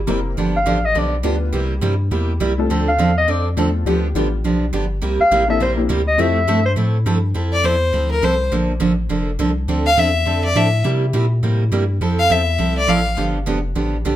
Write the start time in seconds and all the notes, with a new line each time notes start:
0.07 F1 C3 G3 A#3 C4 E4 G4 A#4
0.37 G1 D3 F3 B3 D4 G4
0.56 F5
0.66 A1 D3 F3 B3 D4 G4
0.85 D#5
0.95 B1 D3 F3 B3 D4 G4 D5
1.23 D2 D3 F3 B3 D4 F4 G4 B4
1.52 C2 C3 G3 A#3 E4 G4
1.81 G2 C3 G3 A#3 E4 G4
2.11 E2 C3 G3 A#3 E4 G4
2.40 C2 C3 G3 A#3 E4 G4
2.58 A3 C4 D4 F4 A4
2.70 D2 D3 F3 C4 D4 A4
2.88 F5
2.98 E2 D3 F3 C4 D4 A4
3.18 D#5
3.28 F2 D3 F3 C4 D4 A4 D5
3.57 E2 D3 F3 A3 C4 D4 F4 A4
3.85 D2 D3 F3 G3 B3 D4 F4 G4
4.14 A1 D3 F3 G3 B3 D4 F4 G4
4.44 B1 D3 F3 B3 D4 G4
4.73 G1 D3 F3 B3 D4 G4
5.02 C2 C3 G3 A#3 E4 G4
5.20 C2 F5
5.31 A1 C3 G3 A#3 E4 G4
5.48 A#3 C4 D4 E4 A4 E5
5.60 A#1 C3 G3 A#3 E4 G4 C5
5.77 A#3 C4 D4 E4 G4
5.89 D2 C3 G3 A#3 E4 G4
6.08 D#5
6.18 F2 F3 A3 C4 E4 F4 G4 A4 E5
6.48 G2 F3 A3 C4 E4 A4
6.65 C5
6.76 A2 F3 A3 C4 E4 A4
7.06 G2 F3 A3 C4 E4 A4
7.34 F2 F3 C4 E4 A4
7.53 D5
7.64 E2 F3 C4 E4 A4 C5
7.93 D2 F3 C4 E4 A4
8.12 A#4
8.22 C2 F3 C4 E4 A4 C5
8.52 A#1 D3 F3 A#3 D4 A4
8.80 A1 D3 F3 A#3 D4 A4
9.09 F1 D3 F3 A#3 D4 A4
9.39 C2 D3 F3 A#3 D4 A4
9.68 D2 D3 F3 C4 D4 A4
9.86 F5
9.97 E2 D3 F3 C4 D4 A4 E5
10.26 F2 D3 F3 C4 D4 A4
10.45 D5
10.55 A2 D3 F3 C4 D4 A4 E5
10.84 C3 G3 A#3 E4 G4
11.13 A#2 C3 G3 A#3 E4 G4
11.43 A2 C3 G3 A#3 E4 G4
11.72 G2 C3 G3 A#3 E4 G4
12.01 F2 F3 C4 E4 A4
12.19 F5
12.30 E2 F3 C4 E4 A4 E5
12.58 C2 F3 C4 E4 A4
12.78 D5
12.87 A1 F3 C4 E4 A4 F5
13.17 G1 D3 F3 B3 D4 G4
13.46 F1 D3 F3 B3 D4 G4
13.75 A1 D3 F3 B3 D4 G4
14.05 B1 D3 F3 B3 D4 G4